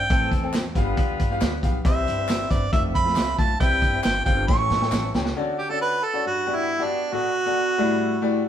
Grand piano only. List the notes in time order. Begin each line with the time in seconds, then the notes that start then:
0.11 A2 C4 A4 G5
0.43 C4 A4 G5
0.76 G2 B3 G4 F5
1.31 B3 G4 F5
1.63 B3 G4 F5
1.85 C3 C4 B4 E5
2.18 C4 B4 E5
2.50 C4 B4 E5
2.72 A3 F4 E5
3.05 A3 F4 E5
3.38 A3 F4 E5
3.60 C3 C4 B4 E5
3.93 C4 B4 E5
4.26 C4 G4 F5
4.48 A2 C#4 A4 G5
4.81 C#4 A4 G5
5.15 C#4 A4 G5
5.36 D3 C#4 F#4 A4 D5
5.70 C#4 F#4 A4 D5
6.14 C#4 F#4 A4 D5
6.25 G2
6.47 B3 F#4 G4 D5
6.79 B3 F#4 G4 D5
7.13 B2 B3 F#4 A4 D5
7.46 B3 F#4 A4 D5
7.78 A2 G3 A3 E4 D5
8.22 A3 E4 G4 D5